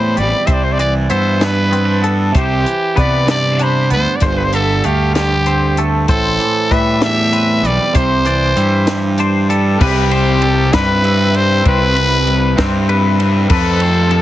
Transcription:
Already playing: E2 A2 E3 G3 C4 C5 B5
0.17 A1 G3 D5, closed hi-hat
0.46 C2 C3 C5 E5, kick, closed hi-hat
0.53 D5
0.64 C5
0.72 D5
0.79 E3 D5, closed hi-hat
1.10 G2 B3 C5 E5, closed hi-hat
1.41 G2 B4, snare, closed hi-hat
1.70 B3 C4, closed hi-hat
1.85 D4
2.02 B3 A4, closed hi-hat
2.32 C2 C3 C5, kick, closed hi-hat
2.37 G4
2.64 E3, closed hi-hat
2.95 C3 B3 B4 D5, kick, closed hi-hat
3.26 G2 G4 D5, snare, closed hi-hat
3.59 D4 C5 B5, closed hi-hat
3.90 D2 B3 C5, closed hi-hat
4.16 D5
4.20 G1 G2 C5, kick, closed hi-hat
4.27 C5
4.38 B4
4.44 C5
4.53 D3 A4 E5, closed hi-hat
4.84 D2 A3 G4 F5, closed hi-hat
5.14 G2 G4, snare, closed hi-hat
5.46 C4 C5, closed hi-hat
5.77 A3 A4, closed hi-hat
6.08 A1 A2 A4 C5, kick, closed hi-hat
6.39 E3, closed hi-hat
6.71 A2 G3 B4 E5, kick, closed hi-hat
7.01 E2 G4 E5, snare, closed hi-hat
7.33 C4 B4, closed hi-hat
7.63 B1 G3 D5, closed hi-hat
7.94 C2 C3 C5, kick, closed hi-hat
8.25 E3 D5, closed hi-hat
8.56 G2 G3 E5, closed hi-hat
8.87 G2, snare, closed hi-hat
9.18 D4 C5, closed hi-hat
9.50 G3 A4, closed hi-hat
9.73 A4
9.79 C2 C3 G3 C4 E4 G4 B4, kick, crash
10.11 C5, ride
10.42 A4, ride
10.72 G2 C3 G3 C4 E4 B4, kick, snare, ride
11.03 C3 G3 C4 E4 E5, ride
11.33 G3 C4 E4 C5, ride
11.64 C2 C3 G3 C4 E4 B4, kick, ride
11.95 B4, ride
12.27 ride
12.56 G2 C3 G3 C4 E4, kick, snare, ride
12.89 C3 G3 C4 E4 B4, ride
13.19 G3 C4 E4, ride
13.49 F2 C3 F3 A3 C4 A4 B4, kick, crash
13.80 C5, ride
14.11 A4, ride

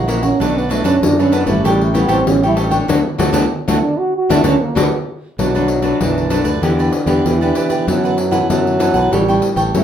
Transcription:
Already playing: A#1 C#3 G3
0.08 E3 A#3 C#4 E4 A#4 C#5 F#5, pandeiro
0.22 C#4 A#4 C#5 F#5, pandeiro
0.40 B1 B2 F#3 A3 D4 A4 B4 D5, pandeiro
0.58 B3, pandeiro
0.69 F#3 A3 D4 A4 B4 D5, pandeiro
0.84 F#2 C#4 D4 A4 B4 D5, pandeiro
1.02 F#2 D4, pandeiro
1.19 F#3 A3 C#4 D4 A4 B4 D5, pandeiro
1.32 B3 D4 A4 B4 D5, pandeiro
1.46 G#1 G3 A3 C#4 E4 A4 B4 D5, pandeiro
1.64 A1 A2 G3 G4 A4 C#5 G5, pandeiro
1.81 A3, pandeiro
1.94 G3 B3 C#4 E4 G4 A4 C#5 G5, pandeiro
2.08 A1 C4 G4 A4 C#5 G5, pandeiro
2.26 A1 E3 C#4, pandeiro
2.43 G3 C#4 E4 A4 C#5 G5, pandeiro
2.56 G4 A4 C#5 G5, pandeiro
2.70 F#3 A3 D4 A4 C#5 G5, pandeiro
2.88 D2 F#3 A3 D4 F#4 A4 D5, pandeiro
3.18 D2 F#3 A3 D4 F#4 A4 D5, pandeiro
3.32 D2 F#3 A3 D4 F#4 A4 D5, pandeiro
3.68 D2 F#3 A3 D4 F#4 A4 D5, pandeiro
3.82 D4
3.98 F#4
4.16 F#4
4.29 D2 F#3 A3 D4 E4 F#4 A4 D5, pandeiro
4.43 D2 F#3 A3 C#4 D4 F#4 A4 D5, pandeiro
4.60 A#3
4.75 D2 F#3 A3 D4 F#4 A4 D5, pandeiro
4.79 B3
5.38 B1 B2 F#3 A3 D4 A4 B4 D5, pandeiro
5.55 F#3 A3 D4 A4 B4 D5, pandeiro
5.68 muted cavaquinho stroke, pandeiro
5.82 F#3 A3 D4 A4 B4 D5, pandeiro
6.01 B1 F#2 E3 D4 A4 B4 D5, pandeiro
6.18 pandeiro
6.30 D3 F#3 A3 D4 A4 B4 D5, pandeiro
6.44 D2 A4 B4 D5, pandeiro
6.62 E2 D3 E3 B3 D4 E4 G4 B4 D5, pandeiro
6.79 G4 B4 D5, pandeiro
6.92 muted cavaquinho stroke, pandeiro
7.06 E2 B3 D4 G4 B4 D5, pandeiro
7.25 E2 B2 E3, pandeiro
7.41 B3 D4 G4 B4 D5, pandeiro
7.55 E4 G4 B4 D5, pandeiro
7.69 G4 B4 D5, pandeiro
7.87 F#2 E3 F#3 B3 D4 E4 A4 B4 F#5, pandeiro
8.04 A4 B4 F#5, pandeiro
8.17 muted cavaquinho stroke, pandeiro
8.31 E3 B3 E4 A4 B4 F#5, pandeiro
8.49 F#2 F#3 D4 A4 B4 F#5, pandeiro
8.67 pandeiro
8.79 E3 B3 D4 E4 A4 B4 F#5, pandeiro
8.94 B1 A4 B4 F#5, pandeiro
9.11 A1 A2 G3 C#4 E4 G4 A4 C#5 G5, pandeiro
9.28 G3 C#4 E4 A4 C#5 G5, pandeiro
9.42 muted cavaquinho stroke, pandeiro
9.56 A1 A4 C#5 G5, pandeiro
9.74 F#2 E3 G3 A3 C#4 E4, pandeiro

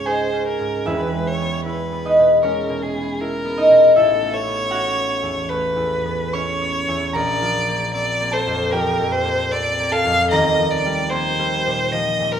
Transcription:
Already playing: C#2 G#2 G#3 C#4 A#4 A#5
0.06 D#4 G#4 C5 G#5
0.33 C#4
0.47 A#4
0.60 G#2
0.85 E1 E2 E4 B4 E5
1.14 G#3
1.27 C#5
1.41 B3
1.66 E4 B4
1.92 B3
2.05 D#4 D#5
2.19 B2
2.43 G#3 C#4 A#4 C#5
2.69 B2
2.83 G#4
2.94 B3
3.21 E4 A#4
3.45 B3
3.57 D#4 D#5
3.70 B2
3.96 A1 E4 A4 E5
4.21 A3
4.33 C#5
4.47 B3
4.71 C#4 F#4 F#5
4.97 B3
5.22 E2
5.49 A3 B4
5.76 E2
6.05 B3
6.33 C#4 C#5 C#6
6.61 B3
6.88 E2
7.13 A#1 A#4 D5 A#5
7.42 F3
7.69 A#3
7.94 C4 D5
8.21 A#3
8.31 A4 C5 A5
8.46 F2
8.71 F3 G4 A#4 G5
9.00 F2
9.12 C5
9.25 A#3
9.51 C4 D5
9.80 A#3
9.92 A4 F5 A5
10.05 F2
10.31 D#1 D#2 A#4 D#5 A#5
10.59 F3
10.71 D5
10.86 G3
11.10 A#3 C5 C6
11.39 G3
11.67 A#2
11.92 F3 D#5
12.20 A#2
12.32 A#4

